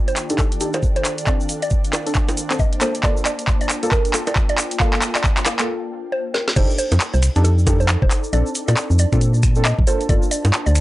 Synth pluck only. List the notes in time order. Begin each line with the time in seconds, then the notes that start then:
0.08 C5
0.39 A4
0.74 C5
0.96 C5
1.27 D5
1.63 D5
1.93 D5
2.60 D#5
2.82 C5
3.04 D5
3.26 D5
3.61 D5
3.92 A#4
4.27 D5
4.49 D5
4.80 F5
5.15 D5
5.46 F5
6.12 C5
6.34 A#4
6.56 C5
6.79 C5
7.14 C5
7.44 A4
7.80 C5
8.02 C5
8.33 D5
8.68 D5
8.99 D5
9.65 D#5
9.87 C5
10.09 D5
10.31 D5
10.66 D5